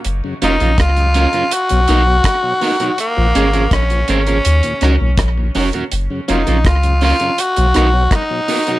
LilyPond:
<<
  \new Staff \with { instrumentName = "Clean electric guitar" } { \time 4/4 \key fis \major \tempo 4 = 82 r8 <cis' eis' ais'>16 <cis' eis' ais'>16 r8 <cis' eis' ais'>16 <cis' eis' ais'>16 r8 <dis' fis' ais'>16 r8. <dis' fis' ais'>16 <dis' fis' ais'>16 | r8 <cis' gis' ais'>16 <cis' gis' ais'>16 r8 <cis' gis' ais'>16 <cis' gis' ais'>16 r8 <cis' fis' ais'>16 r8. <cis' fis' ais'>16 <cis' fis' ais'>16 | r8 <cis' eis' ais'>16 <cis' eis' ais'>16 r8 <cis' eis' ais'>16 <cis' eis' ais'>16 r8 <dis' fis' ais'>16 r8. <dis' fis' ais'>16 <dis' fis' ais'>16 | }
  \new Staff \with { instrumentName = "Tenor saxophone" } { \time 4/4 \key fis \major r8 dis'8 eis'4 fis'2 | ais4 cis'8 cis'4. r4 | r8 dis'8 eis'8 eis'8 fis'4 dis'4 | }
  \new Staff \with { instrumentName = "Tonewheel organ" } { \clef bass \time 4/4 \key fis \major << { r8 <fis ais eis'>8 r8 <fis ais eis'>8 r8 <ais b dis'>8 r8 <ais b dis'>8 | r8 <gis ais cis'>8 r8 <gis ais cis'>8 r8 <fis cis' dis'>8 r8 <fis cis' dis'>8 | r8 <fis ais eis'>8 r8 <fis ais eis'>8 r8 <ais b dis'>8 r8 <ais b dis'>8 | } \\ { r16 <fis, cis>16 r16 <fis, cis>16 r16 <fis, cis>16 r16 <fis, cis>16 r16 <b, fis>16 r16 <b, fis>16 r16 <b, fis>16 r16 <b, fis>16 | r16 <ais, eis>16 r16 <ais, eis>16 r16 <ais, eis>16 r16 <ais, eis>16 r16 <dis, ais,>16 r16 <dis, ais,>16 r16 <dis, ais,>16 r16 <dis, ais,>16 | r16 <fis, cis>16 r16 <fis, cis>16 r16 <fis, cis>16 r16 <fis, cis>16 r16 <b, fis>16 r16 <b, fis>16 r16 <b, fis>16 r16 <b, fis>16 | } >> }
  \new Staff \with { instrumentName = "Sub bass" } { \clef bass \time 4/4 \key fis \major fis,,16 r16 eis,,16 ais,,16 cis,8. r8 b,,16 b,,8 r4 | r16 ais,,16 gis,,8 ais,,8 gis,,8 dis,16 r16 cis,16 b,,16 ais,,8 eis,,16 r16 | fis,,16 r16 eis,,16 ais,,16 cis,8. r8 b,,16 b,,8 r4 | }
  \new DrumStaff \with { instrumentName = "Drums" } \drummode { \time 4/4 hh8 hh16 hh16 <hh bd ss>16 hh16 hh16 hh16 hh16 hh16 hh8 <hh bd ss>8 hho16 hh16 | hh8 hh16 hh16 <hh bd ss>16 hh16 hh16 hh16 hh16 hh16 <hh ss>8 <hh bd ss>8 hho16 hh16 | hh8 hh16 hh16 <hh bd ss>16 hh16 hho16 hh16 hh16 hh16 <hh ss>8 <hh bd ss>8 hho16 hh16 | }
>>